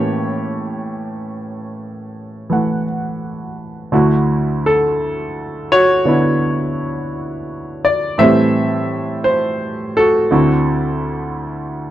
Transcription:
0.00 3.89 A2 soft
0.00 2.48 E3 soft
0.00 3.92 A#3 soft
0.00 3.93 C#4 soft
0.00 3.95 G4 soft
0.00 2.82 C#5 medium
2.50 3.92 E3 soft
2.50 3.91 A3 soft
2.50 3.93 F#5 soft
3.92 8.18 D2 soft
3.92 6.04 D3 soft
3.92 8.18 A3 soft
3.92 6.07 E4 soft
3.92 5.71 F#4 soft
4.66 5.75 A4 medium
5.72 7.80 F#4 medium
5.72 7.90 C#5 medium
6.05 8.18 D3 soft
6.05 8.18 B3 soft
6.05 8.18 D4 soft
6.05 8.19 E4 soft
7.85 8.20 D5 medium
8.18 10.30 A2 soft
8.18 10.31 E3 soft
8.18 10.31 A3 soft
8.18 10.30 C4 soft
8.18 9.23 C5 medium
8.18 9.21 E5 medium
8.22 10.33 G3 soft
9.24 9.98 C5 medium
9.97 10.31 F#4 soft
9.97 11.91 A4 medium
10.31 11.91 D2 soft
10.31 11.91 D3 soft
10.31 11.91 C4 soft
10.31 11.91 E4 soft
10.31 11.91 F#4 soft

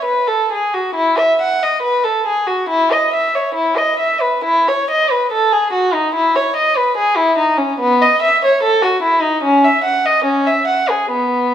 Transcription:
0.04 0.26 B4 soft
0.27 0.50 A4 soft
0.52 0.73 G#4 soft
0.74 0.95 F#4 soft
0.94 1.16 E4 medium
1.18 1.39 E5 soft
1.41 1.60 F#5 soft
1.63 1.82 D#5 soft
1.82 2.02 B4 soft
2.03 2.25 A4 soft
2.26 2.47 G#4 soft
2.47 2.68 F#4 soft
2.69 2.89 E4 medium
2.92 3.12 D#5 soft
3.14 3.33 E5 soft
3.35 3.55 C#5 soft
3.54 3.75 E4 medium
3.77 3.98 D#5 soft
3.99 4.20 E5 soft
4.21 4.43 B4 soft
4.44 4.65 E4 medium
4.68 4.88 C#5 medium
4.90 5.09 D#5 medium
5.11 5.30 B4 soft
5.32 5.50 A4 medium
5.52 5.72 G#4 medium
5.72 5.92 F#4 medium
5.94 6.13 D#4 soft
6.14 6.33 E4 medium
6.36 6.55 C#5 medium
6.56 6.75 D#5 medium
6.77 6.96 B4 medium
6.97 7.16 G#4 medium
7.16 7.37 E4 medium
7.38 7.57 D#4 medium
7.58 7.78 C#4 medium
7.80 7.98 B3 medium
8.02 8.20 D#5 medium
8.22 8.40 E5 medium
8.44 8.62 C#5 medium
8.62 8.81 A4 medium
8.82 9.01 F#4 medium
9.02 9.21 E4 medium
9.22 9.41 D#4 medium
9.43 9.62 C#4 medium
9.64 9.83 E5 medium
9.84 10.03 F#5 medium
10.06 10.25 D#5 medium
10.24 10.45 C#4 medium
10.46 10.68 E5 medium
10.67 10.89 F#5 medium
10.90 11.12 G#4 soft
11.11 11.54 B3 medium

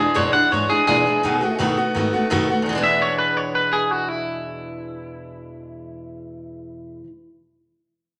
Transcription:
0.00 0.14 E3 soft
0.00 0.14 G#3 soft
0.00 0.14 D4 medium
0.00 0.15 E4 medium
0.00 0.15 G#4 loud
0.14 0.33 E2 medium
0.14 0.33 F#2 loud
0.14 0.33 B2 medium
0.14 0.33 E3 medium
0.14 0.33 G#3 medium
0.14 0.32 D4 loud
0.14 0.31 E4 medium
0.14 0.33 C#5 loud
0.32 0.50 E3 soft
0.32 0.51 G#3 medium
0.32 0.51 D4 medium
0.32 0.51 E4 medium
0.32 0.51 F#5 loud
0.32 muted upright bass stroke medium
0.51 0.69 G#2 medium
0.51 0.69 E3 medium
0.51 0.70 G#3 medium
0.51 0.69 D4 medium
0.51 0.69 E4 medium
0.51 0.69 C#5 loud
0.70 0.87 E3 soft
0.70 0.87 G#3 soft
0.70 0.87 D4 soft
0.70 0.88 E4 medium
0.70 0.86 G#4 medium
0.70 muted upright bass stroke medium
0.87 1.05 E2 medium
0.87 1.05 A#2 loud
0.87 1.05 B2 medium
0.87 1.06 E3 medium
0.87 1.06 G#3 medium
0.87 1.05 D4 medium
0.87 1.04 E4 medium
0.87 1.57 G#4 loud
1.06 1.23 E3 soft
1.06 1.24 G#3 soft
1.06 1.24 D4 soft
1.06 1.23 E4 medium
1.06 muted upright bass stroke medium
1.23 1.41 B2 medium
1.23 1.41 D#3 medium
1.23 1.42 A3 medium
1.23 1.41 B3 medium
1.23 1.40 F#4 medium
1.41 1.58 A3 medium
1.41 1.59 B3 medium
1.41 1.59 F#4 medium
1.41 muted upright bass stroke medium
1.58 1.77 A2 loud
1.58 1.77 B2 medium
1.58 1.77 D#3 medium
1.58 1.77 A3 loud
1.58 1.77 B3 medium
1.58 1.76 F#4 loud
1.77 1.95 A3 soft
1.77 1.95 B3 medium
1.77 1.95 F#4 medium
1.77 muted upright bass stroke medium
1.95 2.13 G#2 medium
1.95 2.13 D#3 medium
1.95 2.13 A3 medium
1.95 2.13 B3 medium
1.95 2.12 F#4 medium
2.13 2.30 A3 soft
2.13 2.31 B3 medium
2.13 2.31 F#4 medium
2.13 muted upright bass stroke medium
2.30 2.49 F#2 loud
2.30 2.48 B2 medium
2.30 2.49 D#3 medium
2.30 2.49 A3 loud
2.30 2.49 B3 loud
2.30 2.48 F#4 loud
2.49 2.68 A3 medium
2.49 2.67 B3 medium
2.49 2.67 F#4 medium
2.49 muted upright bass stroke medium
2.62 7.01 E2 medium
2.62 7.03 B2 medium
2.67 7.00 E2 medium
2.67 7.05 E3 medium
2.73 7.07 G#3 medium
2.73 7.08 D4 medium
2.78 7.09 E4 loud
2.83 3.01 E5 loud
3.02 3.18 C#5 medium
3.19 3.37 B4 loud
3.37 3.55 C#5 medium
3.55 3.73 B4 medium
3.73 3.91 G#4 loud
3.91 4.09 F#4 medium
4.09 6.99 E4 medium

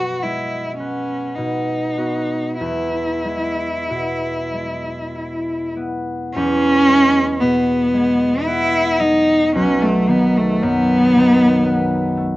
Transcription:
0.00 1.36 B2 soft
0.00 0.79 B3 soft
0.00 0.24 F#4 medium
0.23 1.40 G#3 soft
0.23 0.77 E4 medium
0.77 1.96 B3 soft
0.77 1.36 C#4 medium
1.35 2.66 B2 soft
1.35 2.58 D#4 medium
1.97 5.76 B3 soft
1.97 2.66 F#4 soft
2.58 6.35 E2 soft
2.58 5.72 E4 medium
3.25 4.52 G#3 soft
3.90 6.39 B2 soft
4.53 6.87 G#3 soft
5.16 9.06 E4 soft
5.77 8.46 B3 soft
6.33 9.60 E2 medium
6.33 7.42 C#4 loud
6.88 7.93 G#3 soft
7.41 9.60 B2 soft
7.41 8.46 B3 medium
7.94 8.99 G#3 soft
8.44 11.65 B3 soft
8.44 9.01 E4 medium
9.00 9.59 G#3 soft
9.00 9.54 D#4 medium
9.55 12.37 B1 medium
9.55 9.84 C#4 medium
9.82 10.11 A3 medium
10.08 11.15 D#3 soft
10.08 10.38 B3 medium
10.37 10.65 A3 medium
10.62 12.37 F#2 medium
10.62 12.18 B3 loud
11.16 12.37 D#3 medium
11.66 12.37 B3 soft
12.17 12.37 A3 soft

